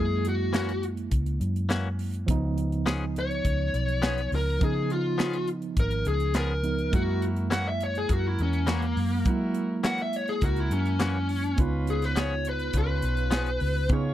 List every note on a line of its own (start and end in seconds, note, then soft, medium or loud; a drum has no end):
0.00 1.08 F#2 medium
0.00 2.23 G#3 medium
0.00 2.24 A#3 medium
0.00 2.25 E4 medium
0.00 0.25 G#4 medium
0.25 0.83 F#4 medium
0.25 closed hi-hat medium
0.53 0.71 E3 medium
0.53 0.71 A#3 medium
0.53 0.72 C#4 medium
0.53 0.72 F#4 medium
0.53 snare loud
0.53 closed hi-hat medium
0.69 closed hi-hat soft
0.83 closed hi-hat medium
0.97 closed hi-hat soft
1.11 1.38 C#2 medium
1.11 kick medium
1.11 closed hi-hat medium
1.26 closed hi-hat soft
1.40 2.24 F#2 medium
1.40 closed hi-hat medium
1.56 closed hi-hat soft
1.69 1.87 E3 medium
1.69 1.88 A#3 medium
1.69 1.88 C#4 medium
1.69 1.88 F#4 medium
1.69 snare loud
1.69 closed hi-hat medium
1.99 open hi-hat medium
2.14 closed hi-hat soft
2.26 3.40 C#2 loud
2.26 4.56 F3 medium
2.26 4.57 B3 medium
2.26 kick loud
2.26 closed hi-hat medium
2.31 4.58 D#4 medium
2.58 closed hi-hat medium
2.72 closed hi-hat soft
2.86 3.04 F3 medium
2.86 3.04 B3 medium
2.86 3.04 C#4 medium
2.86 3.05 G#4 loud
2.86 snare loud
2.86 closed hi-hat medium
3.16 4.30 C#5 medium
3.16 closed hi-hat medium
3.31 closed hi-hat soft
3.45 3.71 C#2 medium
3.45 kick medium
3.45 closed hi-hat medium
3.73 4.28 B1 medium
3.73 closed hi-hat medium
3.88 closed hi-hat soft
4.02 4.20 F3 medium
4.02 4.20 B3 medium
4.02 4.20 C#4 medium
4.02 4.21 G#4 medium
4.02 snare loud
4.02 closed hi-hat medium
4.18 closed hi-hat soft
4.32 4.58 C#2 medium
4.32 4.62 A#4 medium
4.32 open hi-hat medium
4.59 5.73 C#3 medium
4.59 6.59 F3 medium
4.59 6.60 B3 medium
4.59 6.61 D#4 medium
4.59 kick loud
4.59 closed hi-hat medium
4.64 4.91 G#4 medium
4.90 5.48 F4 medium
4.90 closed hi-hat medium
5.18 5.36 F3 medium
5.18 5.36 B3 medium
5.18 5.36 C#4 medium
5.18 5.37 G#4 medium
5.18 snare loud
5.18 closed hi-hat medium
5.33 closed hi-hat soft
5.47 closed hi-hat medium
5.62 closed hi-hat soft
5.77 6.03 G#1 medium
5.77 6.07 A#4 medium
5.77 kick medium
5.77 closed hi-hat medium
5.91 closed hi-hat soft
6.05 6.89 C#2 loud
6.05 6.35 G#4 medium
6.05 closed hi-hat medium
6.20 closed hi-hat soft
6.34 6.52 F3 medium
6.34 6.53 B3 medium
6.34 6.53 C#4 medium
6.34 6.53 G#4 medium
6.34 6.92 A#4 medium
6.34 snare loud
6.34 closed hi-hat medium
6.62 6.92 F3 soft
6.62 6.93 B3 soft
6.62 6.93 D#4 medium
6.62 closed hi-hat medium
6.79 closed hi-hat soft
6.92 8.05 F#2 loud
6.92 9.21 G#3 medium
6.92 9.22 A#3 soft
6.92 7.51 E4 medium
6.92 9.23 E4 medium
6.92 7.51 F#4 medium
6.92 7.22 F#4 medium
6.92 7.51 A#4 medium
6.92 kick loud
6.92 closed hi-hat medium
7.22 closed hi-hat medium
7.36 closed hi-hat soft
7.50 7.68 E3 medium
7.50 7.69 A#3 medium
7.50 7.69 C#4 medium
7.50 7.69 F#4 medium
7.50 7.66 F#5 loud
7.50 snare loud
7.50 closed hi-hat medium
7.68 7.81 E5 medium
7.80 7.96 C#5 medium
7.80 closed hi-hat medium
7.95 8.13 G#4 medium
7.95 closed hi-hat soft
8.09 8.36 F#2 medium
8.09 8.67 E4 medium
8.09 8.67 F#4 medium
8.09 8.67 A#4 medium
8.09 kick medium
8.09 closed hi-hat medium
8.13 8.27 F#4 medium
8.27 8.40 E4 medium
8.39 8.93 E2 medium
8.39 8.69 C#4 medium
8.39 closed hi-hat medium
8.53 closed hi-hat soft
8.67 8.85 E3 medium
8.67 8.85 A#3 medium
8.67 9.25 A#3 medium
8.67 8.85 C#4 medium
8.67 8.85 F#4 medium
8.67 snare loud
8.67 closed hi-hat medium
8.82 closed hi-hat soft
8.96 9.23 F#2 medium
8.96 open hi-hat medium
9.25 10.38 F#3 medium
9.25 11.54 G#3 medium
9.25 11.55 A#3 medium
9.25 9.84 E4 medium
9.25 9.84 F#4 medium
9.25 9.84 A#4 medium
9.25 kick loud
9.25 closed hi-hat medium
9.29 11.56 E4 medium
9.54 closed hi-hat medium
9.83 10.01 E3 medium
9.83 10.01 A#3 medium
9.83 10.02 C#4 medium
9.83 10.02 F#4 medium
9.83 9.99 F#5 loud
9.83 snare loud
9.83 closed hi-hat medium
9.98 closed hi-hat soft
10.02 10.16 E5 medium
10.13 10.29 C#5 medium
10.13 closed hi-hat medium
10.28 10.42 G#4 medium
10.28 closed hi-hat soft
10.41 10.68 C#2 medium
10.41 11.00 E4 medium
10.41 11.00 F#4 medium
10.41 10.60 F#4 medium
10.41 11.00 A#4 medium
10.41 kick medium
10.41 closed hi-hat medium
10.56 10.72 E4 medium
10.56 closed hi-hat soft
10.71 11.54 F#2 loud
10.71 11.00 C#4 medium
10.71 closed hi-hat medium
10.86 closed hi-hat soft
10.99 11.17 E3 medium
10.99 11.17 A#3 medium
10.99 11.18 C#4 medium
10.99 11.57 C#4 loud
10.99 11.18 F#4 medium
10.99 snare loud
10.99 closed hi-hat medium
11.29 open hi-hat medium
11.44 closed hi-hat soft
11.56 12.70 C#2 loud
11.56 13.86 B3 medium
11.56 12.16 C#4 medium
11.56 13.87 D#4 medium
11.56 12.16 F4 medium
11.56 12.16 B4 medium
11.56 kick loud
11.56 closed hi-hat medium
11.60 13.88 F4 medium
11.87 12.05 G#4 medium
11.87 closed hi-hat medium
12.02 12.17 B4 medium
12.02 snare soft
12.02 closed hi-hat soft
12.16 12.33 F3 medium
12.16 12.34 B3 medium
12.16 12.34 C#4 medium
12.16 12.34 G#4 loud
12.16 12.46 C#5 medium
12.16 snare loud
12.16 closed hi-hat medium
12.45 12.75 B4 medium
12.45 closed hi-hat medium
12.59 closed hi-hat soft
12.73 13.00 C#2 medium
12.73 13.32 C#4 medium
12.73 13.32 F4 medium
12.73 13.32 B4 medium
12.73 kick medium
12.73 closed hi-hat medium
12.78 13.89 B4 loud
13.02 13.57 B1 medium
13.02 closed hi-hat medium
13.17 closed hi-hat soft
13.31 13.49 F3 medium
13.31 13.49 B3 medium
13.31 13.50 C#4 medium
13.31 13.50 G#4 medium
13.31 snare loud
13.31 closed hi-hat medium
13.46 closed hi-hat soft
13.60 13.87 C#2 medium
13.60 open hi-hat medium
13.89 14.14 C#3 medium
13.89 14.14 B3 medium
13.89 14.14 C#4 medium
13.89 14.14 D#4 medium
13.89 14.14 F4 medium
13.89 14.14 G#4 medium
13.89 14.14 C#5 medium
13.89 kick loud
13.89 closed hi-hat medium